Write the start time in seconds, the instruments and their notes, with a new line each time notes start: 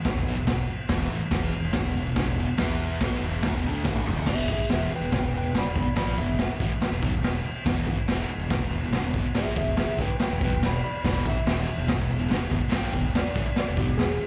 0.04 muted picked electric bass stroke, muted distorted electric guitar stroke, kick, snare, crash
0.13 picked electric bass E1, distorted electric guitar E2 B2
0.23 picked electric bass B1
0.27 distorted electric guitar B2 F#3
0.34 picked electric bass E1, distorted electric guitar E2 B2
0.47 picked electric bass E1, distorted electric guitar E2 B2, kick, snare, crash
0.66 muted picked electric bass stroke, muted distorted electric guitar stroke
0.89 picked electric bass E1, distorted electric guitar E2 B2 E3, kick, snare, crash
1.07 picked electric bass A1, distorted electric guitar A2
1.12 distorted electric guitar E3
1.20 muted picked electric bass stroke
1.24 muted distorted electric guitar stroke
1.31 picked electric bass E1, distorted electric guitar E2 B2 E3, kick, snare, crash
1.53 muted picked electric bass stroke, muted distorted electric guitar stroke
1.61 picked electric bass E1, distorted electric guitar E2 B2
1.73 picked electric bass E1, distorted electric guitar E2 B2, kick, snare, crash
1.83 picked electric bass E1, distorted electric guitar E2 B2
1.94 picked electric bass E1, distorted electric guitar E2 B2
2.03 picked electric bass E1, distorted electric guitar E2 B2
2.16 picked electric bass G1, distorted electric guitar G2 D3, kick, snare, crash
2.24 picked electric bass E1
2.29 distorted electric guitar E2 B2
2.36 picked electric bass E1, distorted electric guitar E2
2.40 distorted electric guitar B2
2.48 muted picked electric bass stroke, muted distorted electric guitar stroke
2.58 picked electric bass E2, distorted electric guitar E3 B3 E4, kick, snare, crash
3.01 picked electric bass B1, distorted electric guitar B2 F#3, kick, snare, crash
3.05 distorted electric guitar B3
3.20 picked electric bass E1, distorted electric guitar E2
3.25 distorted electric guitar B2 E3
3.43 picked electric bass D2, distorted electric guitar D3 A3, kick, snare, crash
3.54 picked electric bass E1, distorted electric guitar E2 B2
3.64 picked electric bass D2, distorted electric guitar D3 A3 D4
3.84 picked electric bass A1, distorted electric guitar A2 E3 A3, kick, snare
3.95 high tom
4.06 picked electric bass E1, distorted electric guitar E2 B2, mid tom
4.16 picked electric bass D2, distorted electric guitar D3 A3, floor tom
4.26 picked electric bass E1, distorted electric guitar E2 B2, electric slide guitar G#4 E5, kick, snare, crash
4.30 distorted electric guitar E3
4.48 picked electric bass A1, distorted electric guitar A2 E3, kick
4.52 electric slide guitar G#4 E5
4.58 muted picked electric bass stroke, muted distorted electric guitar stroke
4.69 picked electric bass E1, distorted electric guitar E2 B2 E3, snare, crash
4.74 electric slide guitar G#4 E5
4.93 electric slide guitar B4 G5, muted distorted electric guitar stroke
5.00 picked electric bass E1, distorted electric guitar E2 B2
5.12 picked electric bass E1, distorted electric guitar E2 B2, kick, snare, crash
5.16 electric slide guitar B4 G5
5.21 picked electric bass E1, distorted electric guitar E2 B2
5.32 picked electric bass E1, distorted electric guitar E2 B2
5.36 electric slide guitar B4 G5
5.42 picked electric bass E1, distorted electric guitar E2 B2
5.53 picked electric bass G1, distorted electric guitar G2 D3, snare, crash
5.58 electric slide guitar D5 B5
5.64 picked electric bass E1, distorted electric guitar E2 B2
5.75 picked electric bass E1, distorted electric guitar E2 B2, electric slide guitar D5 B5, kick
5.86 muted distorted electric guitar stroke
5.96 picked electric bass A#1, distorted electric guitar A#2 F3 A#3, electric slide guitar D5 B5, kick, snare, crash
6.17 picked electric bass E1, distorted electric guitar E2 B2, electric slide guitar E5, kick
6.28 picked electric bass E1, distorted electric guitar E2 B2
6.39 snare, crash
6.49 muted picked electric bass stroke, muted distorted electric guitar stroke
6.60 picked electric bass A1, distorted electric guitar A2 E3, kick
6.70 muted picked electric bass stroke, muted distorted electric guitar stroke
6.80 muted picked electric bass stroke, muted distorted electric guitar stroke, snare, crash
6.91 picked electric bass E1, distorted electric guitar E2 B2
7.02 picked electric bass B1, distorted electric guitar B2 F#3, kick
7.11 picked electric bass E1, distorted electric guitar E2 B2
7.21 picked electric bass E1, distorted electric guitar E2 B2, snare, crash
7.45 muted distorted electric guitar stroke
7.65 picked electric bass E1, distorted electric guitar E2 B2 E3, kick, snare, crash
7.87 picked electric bass A1, distorted electric guitar A2 E3, kick
7.96 muted picked electric bass stroke, muted distorted electric guitar stroke
8.06 picked electric bass E1, distorted electric guitar E2 B2, snare, crash
8.10 distorted electric guitar E3
8.27 muted picked electric bass stroke, muted distorted electric guitar stroke
8.37 picked electric bass E1, distorted electric guitar E2 B2
8.50 picked electric bass E1, distorted electric guitar E2 B2, kick, snare, crash
8.59 picked electric bass E1, distorted electric guitar E2 B2
8.69 picked electric bass E1, distorted electric guitar E2
8.73 distorted electric guitar B2
8.80 picked electric bass E1, distorted electric guitar E2 B2
8.90 picked electric bass G1, snare, crash
8.95 distorted electric guitar G2 D3
9.02 picked electric bass E1
9.06 distorted electric guitar E2 B2
9.14 picked electric bass E1, distorted electric guitar E2 B2, kick
9.25 muted distorted electric guitar stroke
9.35 picked electric bass A#1, distorted electric guitar A#2 F3 A#3, electric slide guitar G#4 E5, kick, snare, crash
9.56 picked electric bass E1, distorted electric guitar E2 B2, electric slide guitar G#4 E5, kick
9.67 picked electric bass E1, distorted electric guitar E2 B2
9.77 electric slide guitar G#4 E5, snare, crash
9.89 muted picked electric bass stroke, muted distorted electric guitar stroke
9.99 picked electric bass A1, distorted electric guitar A2 E3, electric slide guitar B4 G5, kick
10.11 muted picked electric bass stroke, muted distorted electric guitar stroke
10.20 electric slide guitar B4 G5, muted distorted electric guitar stroke, muted picked electric bass stroke, snare, crash
10.31 picked electric bass E1, distorted electric guitar E2 B2
10.41 picked electric bass B1, distorted electric guitar B2 F#3, kick
10.45 electric slide guitar B4 G5
10.52 picked electric bass E1, distorted electric guitar E2 B2
10.63 picked electric bass E1, distorted electric guitar E2 B2, electric slide guitar D5 B5, snare, crash
10.84 electric slide guitar D5 B5, muted picked electric bass stroke, muted distorted electric guitar stroke
11.04 picked electric bass E1, distorted electric guitar E2 B2, electric slide guitar D5 B5, kick, snare, crash
11.08 distorted electric guitar E3
11.25 picked electric bass A1, distorted electric guitar A2, electric slide guitar E5, kick
11.30 distorted electric guitar E3
11.36 muted picked electric bass stroke, muted distorted electric guitar stroke
11.47 picked electric bass E1, distorted electric guitar E2 B2 E3, snare, crash
11.68 muted picked electric bass stroke, muted distorted electric guitar stroke
11.78 picked electric bass E1, distorted electric guitar E2 B2
11.87 picked electric bass E1, distorted electric guitar E2 B2, kick, snare, crash
11.98 picked electric bass E1, distorted electric guitar E2 B2
12.09 picked electric bass E1, distorted electric guitar E2 B2
12.19 picked electric bass E1, distorted electric guitar E2 B2
12.28 picked electric bass G1, distorted electric guitar G2 D3, snare, crash
12.39 picked electric bass E1, distorted electric guitar E2 B2
12.50 picked electric bass E1, distorted electric guitar E2 B2, kick
12.60 muted distorted electric guitar stroke, muted picked electric bass stroke
12.69 picked electric bass A#1, distorted electric guitar A#2 F3 A#3, kick, snare, crash
12.76 electric slide guitar G5
12.92 picked electric bass E1, distorted electric guitar E2 B2, kick
13.04 picked electric bass E1, distorted electric guitar E2 B2
13.15 electric slide guitar D5, snare, crash
13.26 muted picked electric bass stroke, muted distorted electric guitar stroke
13.35 picked electric bass A1, distorted electric guitar A2 E3, kick
13.48 muted picked electric bass stroke, muted distorted electric guitar stroke
13.56 electric slide guitar D5, muted picked electric bass stroke, muted distorted electric guitar stroke, snare, crash
13.68 picked electric bass E1, distorted electric guitar E2 B2
13.77 picked electric bass B1, distorted electric guitar B2 F#3, electric slide guitar G4, kick
13.88 picked electric bass E1, distorted electric guitar E2 B2
13.98 picked electric bass E1, distorted electric guitar E2 B2, electric slide guitar G#4, snare, crash
14.20 muted picked electric bass stroke, muted distorted electric guitar stroke